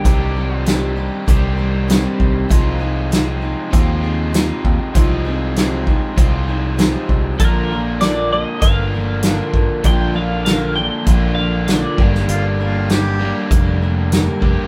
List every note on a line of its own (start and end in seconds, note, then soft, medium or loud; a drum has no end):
0.00 0.35 C3 medium
0.00 0.56 G4 medium
0.05 1.08 C2 medium
0.05 0.35 D#3 medium
0.05 0.36 G3 medium
0.05 0.35 C4 medium
0.05 0.35 D4 medium
0.05 0.34 G4 medium
0.05 kick medium
0.05 closed hi-hat medium
0.35 0.65 G3 soft
0.35 0.65 C4 soft
0.35 0.66 D4 soft
0.35 0.66 G4 soft
0.56 0.93 F4 medium
0.66 0.97 C3 medium
0.66 0.97 D#3 medium
0.66 0.97 G3 medium
0.66 0.96 C4 medium
0.66 0.96 D4 medium
0.66 0.95 G4 medium
0.66 snare medium
0.66 closed hi-hat soft
0.96 1.25 G3 soft
0.96 1.26 C4 soft
0.96 1.27 D4 medium
0.96 1.27 G4 medium
1.26 2.05 C2 medium
1.26 2.49 C3 medium
1.26 2.48 D#3 medium
1.26 1.58 G3 medium
1.26 1.57 C4 medium
1.26 1.57 D4 medium
1.26 1.56 G4 medium
1.26 kick medium
1.26 closed hi-hat soft
1.57 1.88 G3 soft
1.57 1.88 C4 soft
1.57 1.88 D4 soft
1.57 1.88 G4 soft
1.88 2.48 C3 medium
1.88 2.48 D#3 medium
1.88 2.49 G3 medium
1.88 2.49 C4 medium
1.88 2.50 D4 medium
1.88 2.50 G4 medium
1.88 snare medium
1.88 closed hi-hat soft
2.20 2.46 C2 medium
2.20 kick medium
2.49 3.54 C2 medium
2.49 2.80 C3 medium
2.49 2.80 F3 medium
2.49 3.73 G#3 medium
2.49 2.80 C4 medium
2.49 2.80 D#4 medium
2.49 2.78 G#4 medium
2.49 kick loud
2.49 closed hi-hat medium
2.53 3.75 F4 medium
2.79 3.11 C4 soft
2.79 3.11 D#4 soft
2.79 3.11 G#4 medium
3.11 3.42 C3 medium
3.11 3.42 F3 medium
3.11 3.42 C4 medium
3.11 3.41 D#4 medium
3.11 3.40 G#4 medium
3.11 snare medium
3.11 closed hi-hat medium
3.41 3.72 C4 soft
3.41 3.73 D#4 soft
3.41 3.72 G#4 soft
3.71 4.50 D#2 medium
3.71 4.92 C3 medium
3.71 4.03 F3 medium
3.71 4.94 G#3 medium
3.71 4.03 C4 medium
3.71 4.03 D#4 medium
3.71 4.02 G#4 medium
3.71 kick medium
3.71 closed hi-hat medium
3.75 4.97 F4 medium
4.03 4.33 C4 soft
4.03 4.33 D#4 soft
4.03 4.34 G#4 medium
4.33 4.93 C3 medium
4.33 4.94 F3 medium
4.33 4.94 C4 medium
4.33 4.95 D#4 medium
4.33 4.95 G#4 medium
4.33 snare medium
4.33 closed hi-hat medium
4.64 4.77 D#2 medium
4.64 kick medium
4.95 5.99 C2 medium
4.95 5.25 C3 medium
4.95 5.25 F3 medium
4.95 6.16 G#3 medium
4.95 5.26 C4 medium
4.95 5.25 D#4 medium
4.95 6.19 F4 medium
4.95 5.24 G#4 medium
4.95 kick loud
4.95 closed hi-hat medium
5.25 5.56 C4 soft
5.25 5.56 D#4 soft
5.25 5.56 G#4 medium
5.56 5.87 C3 medium
5.56 5.87 F3 medium
5.56 5.87 C4 medium
5.56 5.88 D#4 medium
5.56 5.86 G#4 medium
5.56 snare medium
5.56 closed hi-hat soft
5.87 6.16 C4 soft
5.87 6.17 D#4 soft
5.87 6.17 G#4 medium
5.87 kick medium
6.16 6.95 C2 medium
6.16 7.37 C3 medium
6.16 6.47 F3 medium
6.16 7.38 G#3 medium
6.16 6.48 C4 medium
6.16 6.48 D#4 medium
6.16 7.42 F4 medium
6.16 6.46 G#4 medium
6.16 kick medium
6.16 closed hi-hat medium
6.48 6.77 C4 soft
6.48 6.78 D#4 soft
6.48 6.78 G#4 medium
6.77 7.39 C3 medium
6.77 7.41 F3 medium
6.77 7.40 C4 medium
6.77 7.40 D#4 medium
6.77 7.40 G#4 medium
6.77 snare medium
6.77 closed hi-hat soft
7.09 7.35 C2 medium
7.09 kick medium
7.39 8.43 A#1 medium
7.39 7.71 A#2 medium
7.39 7.71 D3 medium
7.39 7.71 F3 medium
7.39 7.71 A#3 medium
7.39 7.71 D4 medium
7.39 8.61 F4 medium
7.39 8.00 A#4 medium
7.39 7.69 A#4 medium
7.39 kick medium
7.39 closed hi-hat medium
7.70 8.01 F3 soft
7.70 8.01 A#3 soft
7.70 8.02 D4 soft
7.70 8.01 A#4 soft
8.01 8.32 A#2 medium
8.01 8.32 D3 medium
8.01 8.32 F3 medium
8.01 8.32 A#3 medium
8.01 8.32 D4 medium
8.01 8.30 A#4 medium
8.01 8.32 D5 medium
8.01 snare medium
8.01 closed hi-hat soft
8.32 8.61 F3 soft
8.32 8.62 A#3 soft
8.32 8.62 A#4 soft
8.32 8.62 D#5 medium
8.60 9.39 G1 medium
8.60 9.81 A#2 medium
8.60 9.82 D3 medium
8.60 8.93 F3 medium
8.60 8.93 A#3 medium
8.60 9.83 F4 medium
8.60 9.50 F5 medium
8.60 kick medium
8.60 closed hi-hat medium
8.65 8.93 D4 medium
8.65 8.92 A#4 medium
8.94 9.23 F3 soft
8.94 9.23 A#3 soft
8.94 9.23 D4 soft
8.94 9.24 A#4 soft
9.23 9.83 A#2 medium
9.23 9.83 D3 medium
9.23 9.83 F3 medium
9.23 9.84 A#3 medium
9.23 9.84 D4 medium
9.23 9.85 A#4 medium
9.23 snare medium
9.23 closed hi-hat medium
9.53 9.66 G1 medium
9.53 kick medium
9.84 10.88 A#1 medium
9.84 10.15 A#2 medium
9.84 10.15 D3 medium
9.84 10.15 F3 medium
9.84 10.14 A#3 medium
9.84 10.13 D4 medium
9.84 11.06 F4 medium
9.84 10.12 A#4 medium
9.84 10.15 G5 medium
9.84 kick medium
9.84 closed hi-hat medium
10.13 10.45 F3 soft
10.13 10.45 A#3 soft
10.13 10.45 D4 soft
10.13 10.45 A#4 soft
10.13 10.44 F5 medium
10.45 10.76 A#2 medium
10.45 10.76 D3 medium
10.45 10.76 F3 medium
10.45 10.76 A#3 medium
10.45 10.75 D4 medium
10.45 10.75 A#4 medium
10.45 10.75 F5 medium
10.45 snare medium
10.45 closed hi-hat medium
10.76 11.05 F3 soft
10.76 11.07 A#3 soft
10.76 11.07 D4 soft
10.76 11.07 A#4 soft
10.76 11.34 G5 medium
11.06 11.84 A#1 medium
11.06 11.96 A#2 medium
11.06 11.96 D3 medium
11.06 11.37 F3 medium
11.06 11.38 A#3 medium
11.06 11.38 D4 medium
11.06 11.98 F4 medium
11.06 11.37 A#4 medium
11.06 kick loud
11.06 closed hi-hat medium
11.35 11.68 A#4 soft
11.35 11.66 F5 medium
11.39 11.68 F3 soft
11.39 11.68 A#3 soft
11.39 11.68 D4 soft
11.67 11.98 A#2 medium
11.67 11.99 D3 medium
11.67 11.99 F3 medium
11.67 11.98 A#3 medium
11.67 11.98 D4 medium
11.67 11.98 A#4 medium
11.67 12.10 D5 medium
11.67 snare medium
11.67 closed hi-hat medium
11.98 12.24 G1 medium
11.98 12.60 G2 soft
11.98 12.60 D3 medium
11.98 12.60 G3 medium
11.98 12.60 A#3 medium
11.98 12.59 D4 medium
11.98 13.19 G4 medium
11.98 12.59 A#4 medium
11.98 kick medium
12.15 snare soft
12.28 13.31 G1 medium
12.28 12.43 F4 medium
12.28 closed hi-hat medium
12.60 12.90 G3 soft
12.60 12.90 A#3 soft
12.60 12.90 D4 soft
12.60 12.90 F4 medium
12.60 12.90 A#4 medium
12.89 13.20 G2 medium
12.89 13.21 D3 medium
12.89 13.21 G3 medium
12.89 13.21 A#3 medium
12.89 13.20 D4 medium
12.89 13.49 G4 medium
12.89 13.19 A#4 medium
12.89 snare medium
12.89 closed hi-hat soft
13.20 14.40 G2 medium
13.20 14.40 D3 medium
13.20 13.49 G3 soft
13.20 13.50 A#3 soft
13.20 13.51 D4 soft
13.20 14.40 G4 medium
13.20 13.51 A#4 medium
13.50 14.28 F1 medium
13.50 13.81 G3 medium
13.50 13.81 A#3 medium
13.50 13.81 D4 medium
13.50 13.80 A#4 medium
13.50 kick loud
13.50 closed hi-hat medium
13.81 14.11 G3 soft
13.81 14.12 A#3 soft
13.81 14.12 D4 soft
13.81 14.12 A#4 medium
14.12 14.67 G2 medium
14.12 14.67 D3 medium
14.12 14.67 G3 medium
14.12 14.67 A#3 medium
14.12 14.67 D4 medium
14.12 14.67 A#4 medium
14.12 snare loud
14.12 closed hi-hat medium
14.41 14.55 F1 medium
14.41 14.67 G2 medium
14.41 14.67 D3 medium
14.41 14.67 G3 medium
14.41 14.67 A#3 medium
14.41 14.67 D4 medium
14.41 14.67 G4 medium
14.41 kick medium